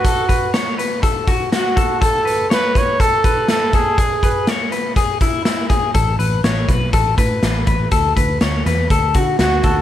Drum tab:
HH |xxxxxxxx|xxxxxxxx|xxxxxxxx|xxxxxxxx|
SD |--o---o-|--o---o-|--o---o-|--o---o-|
BD |oo--oo-o|o--ooo-o|oo--oo-o|o--ooo-o|

HH |xxxxxxxx|
SD |--oo--o-|
BD |oo--oo-o|